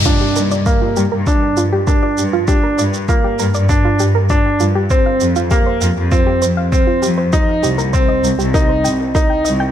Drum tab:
SH |x-xxx-x-x-x-x-x-|x-xxx-xxx-x-x-x-|x-xxx-x-x-x-x-x-|x-xxx-xxx-x-x-x-|
BD |o---o---o---o---|o---o---o---o---|o---o---o---o---|o---o---o---o---|